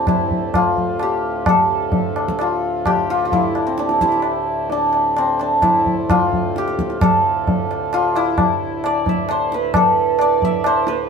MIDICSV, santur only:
0, 0, Header, 1, 2, 480
1, 0, Start_track
1, 0, Tempo, 464396
1, 63, Time_signature, 3, 2, 24, 8
1, 5822, Tempo, 455927
1, 11571, End_track
2, 0, Start_track
2, 0, Title_t, "Santur"
2, 0, Program_c, 0, 15
2, 0, Note_on_c, 0, 60, 70
2, 0, Note_on_c, 0, 62, 70
2, 0, Note_on_c, 0, 67, 69
2, 0, Note_on_c, 0, 69, 67
2, 0, Note_on_c, 0, 74, 77
2, 86, Note_on_c, 0, 64, 74
2, 425, Note_off_c, 0, 74, 0
2, 571, Note_on_c, 0, 65, 85
2, 633, Note_off_c, 0, 64, 0
2, 1056, Note_off_c, 0, 67, 0
2, 1060, Note_on_c, 0, 67, 78
2, 1396, Note_off_c, 0, 69, 0
2, 1539, Note_on_c, 0, 69, 88
2, 2489, Note_off_c, 0, 65, 0
2, 2493, Note_on_c, 0, 65, 77
2, 2958, Note_off_c, 0, 67, 0
2, 2962, Note_on_c, 0, 67, 94
2, 3202, Note_off_c, 0, 65, 0
2, 3206, Note_on_c, 0, 65, 89
2, 3359, Note_off_c, 0, 65, 0
2, 3363, Note_on_c, 0, 65, 64
2, 3440, Note_on_c, 0, 64, 85
2, 3502, Note_off_c, 0, 65, 0
2, 3698, Note_off_c, 0, 62, 0
2, 3704, Note_off_c, 0, 60, 0
2, 3790, Note_on_c, 0, 60, 68
2, 3918, Note_on_c, 0, 62, 77
2, 4150, Note_off_c, 0, 64, 0
2, 4154, Note_on_c, 0, 64, 80
2, 4563, Note_off_c, 0, 69, 0
2, 4876, Note_off_c, 0, 62, 0
2, 4880, Note_on_c, 0, 62, 81
2, 5351, Note_off_c, 0, 60, 0
2, 5355, Note_on_c, 0, 60, 82
2, 5586, Note_off_c, 0, 62, 0
2, 5590, Note_on_c, 0, 62, 73
2, 5810, Note_off_c, 0, 64, 0
2, 5814, Note_on_c, 0, 64, 86
2, 6215, Note_off_c, 0, 67, 0
2, 6319, Note_on_c, 0, 65, 90
2, 6382, Note_off_c, 0, 64, 0
2, 6819, Note_on_c, 0, 67, 92
2, 7297, Note_on_c, 0, 69, 85
2, 8244, Note_off_c, 0, 65, 0
2, 8249, Note_on_c, 0, 65, 95
2, 8486, Note_on_c, 0, 64, 88
2, 8549, Note_off_c, 0, 65, 0
2, 9216, Note_on_c, 0, 74, 93
2, 9462, Note_on_c, 0, 76, 81
2, 9515, Note_off_c, 0, 62, 0
2, 9531, Note_off_c, 0, 60, 0
2, 9690, Note_on_c, 0, 72, 87
2, 9938, Note_on_c, 0, 71, 80
2, 10001, Note_off_c, 0, 72, 0
2, 10126, Note_off_c, 0, 67, 0
2, 10168, Note_off_c, 0, 69, 0
2, 10172, Note_on_c, 0, 69, 75
2, 10640, Note_off_c, 0, 74, 0
2, 10644, Note_on_c, 0, 74, 92
2, 10886, Note_off_c, 0, 76, 0
2, 10890, Note_on_c, 0, 76, 91
2, 11118, Note_on_c, 0, 72, 97
2, 11182, Note_off_c, 0, 71, 0
2, 11345, Note_on_c, 0, 71, 85
2, 11408, Note_off_c, 0, 72, 0
2, 11571, Note_off_c, 0, 64, 0
2, 11571, Note_off_c, 0, 69, 0
2, 11571, Note_off_c, 0, 71, 0
2, 11571, Note_off_c, 0, 74, 0
2, 11571, Note_off_c, 0, 76, 0
2, 11571, End_track
0, 0, End_of_file